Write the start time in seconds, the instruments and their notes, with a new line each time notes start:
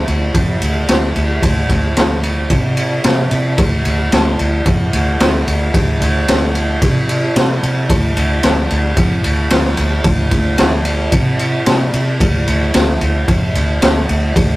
0.08 fingered electric bass D2, ride
0.35 fingered electric bass F2, kick, ride
0.62 fingered electric bass D2, ride
0.88 fingered electric bass D2, snare, ride
1.16 fingered electric bass D2, ride
1.43 fingered electric bass D2, kick, ride
1.69 fingered electric bass D2, kick, ride
1.97 fingered electric bass D2, snare, ride
2.23 ride
2.50 fingered electric bass C3, kick, ride
2.77 ride
3.04 fingered electric bass C3, snare, ride
3.31 fingered electric bass C3, ride
3.58 fingered electric bass D2, kick, ride
3.85 fingered electric bass D2, ride
4.12 fingered electric bass D2, snare, ride
4.39 fingered electric bass D2, ride
4.66 fingered electric bass F2, kick, ride
4.93 fingered electric bass D2, ride
5.20 fingered electric bass D2, snare, ride
5.47 fingered electric bass D2, ride
5.74 fingered electric bass D2, kick, ride
6.01 fingered electric bass D2, ride
6.28 fingered electric bass D2, snare, ride
6.55 ride
6.82 fingered electric bass C3, kick, ride
7.09 ride
7.36 fingered electric bass C3, snare, ride
7.63 fingered electric bass C3, ride
7.90 fingered electric bass D2, kick, ride
8.17 fingered electric bass D2, ride
8.43 fingered electric bass D2, snare, ride
8.71 fingered electric bass D2, ride
8.97 fingered electric bass F2, kick, ride
9.24 fingered electric bass D2, ride
9.50 fingered electric bass D2, snare, ride
9.65 snare
9.77 fingered electric bass D2, ride
10.04 fingered electric bass D2, kick, ride
10.31 fingered electric bass D2, kick, ride
10.58 fingered electric bass D2, snare, ride
10.85 ride
11.12 fingered electric bass C3, kick, ride
11.39 ride
11.66 fingered electric bass C3, snare, ride
11.93 fingered electric bass C3, ride
12.20 fingered electric bass D2, kick, ride
12.47 fingered electric bass D2, ride
12.74 fingered electric bass D2, snare, ride
13.01 fingered electric bass D2, ride
13.28 fingered electric bass F2, kick, ride
13.55 fingered electric bass D2, ride
13.82 fingered electric bass D2, snare, ride
14.09 fingered electric bass D2, ride
14.36 fingered electric bass D2, kick, ride